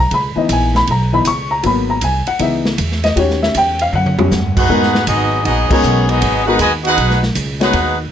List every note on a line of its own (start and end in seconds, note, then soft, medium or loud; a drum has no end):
0.00 0.10 B1 medium
0.00 0.11 A#5 medium
0.11 0.35 C#2 medium
0.11 0.37 B5 medium
0.11 kick soft
0.11 ride medium
0.36 0.85 E3 medium
0.36 0.85 B3 soft
0.36 0.85 D#4 medium
0.36 0.50 D#5 medium
0.36 muted upright bass stroke soft
0.49 0.86 A#1 loud
0.49 0.76 G#5 medium
0.49 kick soft
0.49 hi-hat pedal medium
0.49 ride medium
0.75 0.88 B5 loud
0.75 snare soft
0.87 1.25 B1 medium
0.87 1.14 A#5 medium
0.87 kick soft
0.87 ride medium
1.13 1.24 E3 soft
1.13 1.25 B3 soft
1.13 1.25 D#4 medium
1.13 1.26 B5 medium
1.25 1.62 C#2 medium
1.25 1.51 C#6 loud
1.25 kick soft
1.25 hi-hat pedal medium
1.25 ride medium
1.51 1.64 A#5 medium
1.63 2.01 G#1 loud
1.63 1.92 F#3 medium
1.63 1.93 A#3 soft
1.63 1.93 B3 medium
1.63 1.90 B5 medium
1.63 kick soft
1.63 ride medium
1.90 2.02 A#5 medium
2.01 2.25 C2 medium
2.01 2.28 G#5 medium
2.01 kick soft
2.01 hi-hat pedal medium
2.01 ride medium
2.27 2.40 F#5 medium
2.27 muted upright bass stroke soft
2.27 ride soft
2.39 2.77 C#2 medium
2.39 2.69 E3 medium
2.39 2.69 B3 soft
2.39 2.69 D#4 medium
2.39 3.01 E5 medium
2.39 kick soft
2.39 ride medium
2.65 snare medium
2.78 3.15 E2 loud
2.78 kick soft
2.78 hi-hat pedal medium
2.78 ride medium
2.92 snare soft
3.03 3.16 D#5 medium
3.03 snare soft
3.03 ride medium
3.16 3.53 D#2 medium
3.16 4.17 C#4 soft
3.16 4.17 F#4 medium
3.16 4.65 G4 medium
3.16 3.42 C#5 medium
3.16 kick soft
3.16 ride medium
3.30 snare soft
3.43 3.55 E5 medium
3.43 snare medium
3.54 3.92 E2 loud
3.54 3.80 G5 medium
3.54 kick soft
3.54 hi-hat pedal medium
3.54 ride medium
3.79 3.93 F5 medium
3.79 ride medium
3.93 4.30 F#2 medium
3.93 4.60 F#5 medium
3.93 high tom medium
4.06 high tom medium
4.18 4.30 G3 soft
4.18 4.30 C#4 soft
4.18 4.30 F#4 medium
4.18 floor tom medium
4.31 4.68 G2 loud
4.31 snare medium
4.31 hi-hat pedal medium
4.56 5.03 B3 medium
4.56 5.03 D#4 medium
4.56 5.05 D#4 medium
4.56 5.04 F#4 medium
4.56 5.04 G#4 medium
4.56 5.04 B4 medium
4.56 5.04 F#5 loud
4.56 kick medium
4.56 crash medium
4.69 5.06 G#2 medium
4.69 4.91 G#3 medium
4.69 4.92 B3 medium
4.69 4.92 D#4 medium
4.69 4.92 F#4 medium
4.69 4.92 A#4 medium
4.69 kick soft
4.83 snare soft
4.95 snare medium
5.07 5.44 G#1 loud
5.07 5.42 F#3 medium
5.07 5.42 B3 medium
5.07 5.43 B3 medium
5.07 5.42 D#4 medium
5.07 5.43 F#4 medium
5.07 5.43 G#4 medium
5.07 5.42 D#5 medium
5.07 kick soft
5.07 hi-hat pedal medium
5.07 ride medium
5.43 5.68 A#1 medium
5.43 5.67 F#3 medium
5.43 5.67 B3 medium
5.43 5.68 B3 medium
5.43 5.68 D#4 medium
5.43 5.69 F#4 medium
5.43 5.69 G#4 medium
5.43 5.68 D#5 loud
5.43 kick soft
5.43 ride medium
5.69 6.05 D#3 medium
5.69 6.05 F#3 medium
5.69 6.19 G#3 medium
5.69 6.19 B3 medium
5.69 6.06 B3 medium
5.69 6.05 C#4 medium
5.69 6.19 D#4 medium
5.69 6.06 F#4 medium
5.69 6.19 F#4 medium
5.69 6.06 G#4 medium
5.69 6.20 A#4 medium
5.69 6.07 C#5 medium
5.69 muted upright bass stroke soft
5.69 kick medium
5.69 crash medium
5.83 6.20 B1 medium
5.83 hi-hat pedal medium
6.08 6.46 F#3 medium
6.08 6.43 B3 medium
6.08 6.46 B3 medium
6.08 6.43 D#4 medium
6.08 6.46 F#4 medium
6.08 6.45 G#4 medium
6.08 6.47 D#5 loud
6.08 ride medium
6.22 6.58 G#1 loud
6.22 kick soft
6.22 ride medium
6.44 6.58 G#3 medium
6.44 6.57 B3 medium
6.44 6.58 B3 medium
6.44 6.57 D#4 medium
6.44 6.58 D#4 medium
6.44 6.57 F#4 medium
6.44 6.58 G#4 medium
6.44 6.58 B4 medium
6.44 6.58 F#5 loud
6.48 6.59 F#4 medium
6.48 6.59 A#4 medium
6.58 6.96 D#2 medium
6.58 6.69 B2 medium
6.58 6.70 D#3 medium
6.58 6.69 G#3 medium
6.58 6.72 F#4 medium
6.58 6.72 B4 medium
6.58 6.72 D#5 medium
6.58 6.72 G#5 loud
6.58 kick soft
6.58 hi-hat pedal medium
6.58 ride medium
6.83 7.19 B3 medium
6.83 7.19 D#4 medium
6.83 7.21 D#4 medium
6.83 7.19 F#4 medium
6.83 7.21 G#4 medium
6.83 7.21 B4 medium
6.83 7.21 F#5 loud
6.83 ride medium
6.98 7.34 B1 medium
6.98 kick soft
6.98 ride medium
7.10 snare soft
7.23 snare medium
7.35 7.72 C#2 loud
7.35 kick soft
7.35 hi-hat pedal medium
7.35 ride medium
7.60 7.72 G#3 medium
7.60 7.72 B3 medium
7.60 7.97 B3 medium
7.60 7.72 D#4 medium
7.60 7.97 D#4 medium
7.60 7.72 F#4 medium
7.60 7.96 F#4 medium
7.60 7.97 G#4 medium
7.60 7.97 B4 medium
7.60 7.72 C#5 medium
7.60 7.97 F#5 medium
7.60 snare medium
7.60 ride medium
7.73 8.10 D#2 loud
7.73 kick soft
7.73 ride medium